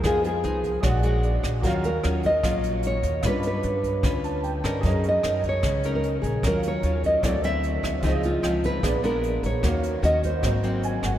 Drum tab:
HH |xxxxxxxx|xxxxxxxx|xxxxxxxx|xxxxxxxx|
SD |r---r--r|--r-r---|r---r--r|--r-r---|
BD |o--oo--o|o--oo--o|o--oo--o|o--oo--o|

HH |xxxxxxxx|xxxxxxxx|xxxxxxxx|
SD |r---r--r|--r-r---|r---r--r|
BD |o--oo--o|o--oo--o|o--oo--o|